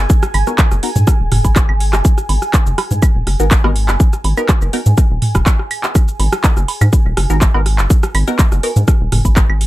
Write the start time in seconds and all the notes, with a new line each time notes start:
Already playing: G#5
0.10 kick, shaker
0.23 cross-stick, shaker
0.34 G#1, open hi-hat, high woodblock, low woodblock
0.47 B3 D#4 F#4 A#4, cross-stick, shaker
0.58 kick, clap, shaker
0.71 F#1, cross-stick, shaker
0.83 B3 D#4 F#4 A#4, open hi-hat
0.96 G#2, mid tom, shaker
1.07 kick, cross-stick, shaker
1.20 D#1
1.32 F#1, cross-stick, mid tom, open hi-hat
1.45 G#1, kick, low woodblock, shaker
1.56 kick, cross-stick, clap, shaker
1.69 G#1, high woodblock
1.80 open hi-hat
1.93 F#1, cross-stick, clap, shaker
2.05 kick, shaker
2.18 cross-stick, shaker
2.29 G#1, open hi-hat, low woodblock
2.42 cross-stick, shaker
2.54 kick, clap, shaker
2.66 F#1, shaker
2.78 cross-stick, open hi-hat, low woodblock
2.91 G#2, mid tom, shaker
3.02 kick, cross-stick, high woodblock, shaker
3.15 D#1
3.27 F#1, cross-stick, open hi-hat
3.40 G#1 B3 D#4 F#4 A#4, shaker
3.51 kick, clap, shaker
3.64 G#1 B3 D#4 F#4 A#4, cross-stick, low woodblock
3.76 open hi-hat
3.88 F#1, cross-stick, clap, shaker
4.00 kick, shaker
4.13 cross-stick, shaker
4.24 G#1, open hi-hat, low woodblock
4.37 B3 D#4 F#4 A#4, high woodblock, shaker
4.49 kick, cross-stick, clap, shaker
4.62 F#1, shaker
4.73 B3 D#4 F#4 A#4, open hi-hat
4.86 G#2, mid tom, shaker
4.97 kick, cross-stick, shaker
5.11 D#1
5.22 mid tom, open hi-hat
5.35 D#1, kick, cross-stick, low woodblock, shaker
5.46 kick, clap, shaker
5.59 cross-stick
5.71 open hi-hat, high woodblock
5.84 cross-stick, clap, shaker
5.95 kick, cross-stick, shaker
6.08 shaker
6.20 G#1, open hi-hat, low woodblock
6.32 cross-stick, shaker
6.44 kick, clap, shaker
6.57 F#1, cross-stick, shaker
6.68 open hi-hat, low woodblock
6.81 G#2, cross-stick, mid tom, high woodblock, shaker
6.93 kick, shaker
7.05 D#1
7.17 F#1, cross-stick, open hi-hat
7.30 G#1 B3 D#4 F#4 A#4, shaker
7.41 kick, cross-stick, clap, shaker
7.54 G#1 B3 D#4 F#4 A#4, low woodblock
7.66 cross-stick, open hi-hat
7.79 F#1, clap, shaker
7.90 kick, shaker
8.03 cross-stick, shaker
8.15 G#1, open hi-hat, high woodblock, low woodblock
8.27 B3 D#4 F#4 A#4, cross-stick, shaker
8.39 kick, clap, shaker
8.52 F#1, cross-stick, shaker
8.63 B3 D#4 F#4 A#4, open hi-hat
8.76 G#2, mid tom, shaker
8.88 kick, cross-stick, shaker
9.01 D#1
9.12 F#1, cross-stick, mid tom, open hi-hat
9.25 G#1, kick, low woodblock, shaker
9.37 kick, cross-stick, clap, shaker
9.49 G#1, high woodblock
9.61 open hi-hat